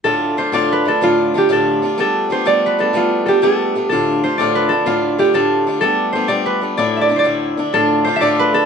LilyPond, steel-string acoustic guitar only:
\new Staff \with { instrumentName = "Steel-string acoustic guitar" } { \time 6/8 \key d \dorian \tempo 4. = 125 <d, a, d a d' f'>4 <d a d' f'>8 <d, a, d a d' f'>4 <d a d' f'>8 | <d, a, d a d' f'>4 <d a d' f'>8 <d, a, d a d' f'>4 <d a d' f'>8 | <g a b d'>4 <g a b d'>8 <g a b d'>4 <g a b d'>8 | <g a b d'>4 <g a b d'>8 <g a b d'>4 <g a b d'>8 |
<d, a, d a d' f'>4 <d a d' f'>8 <d, a, d a d' f'>4 <d a d' f'>8 | <d, a, d a d' f'>4 <d a d' f'>8 <d, a, d a d' f'>4 <d a d' f'>8 | <g a b d'>4 <g a b d'>8 <g a b d'>4 <g a b d'>8 | <d, a, d a d' e'>4 <d a d' e'>8 <d, a, d a d' e'>4 <d a d' e'>8 |
<d, a, d a d' f'>4 <d a d' f'>8 <d, a, d a d' f'>4 <d a d' f'>8 | }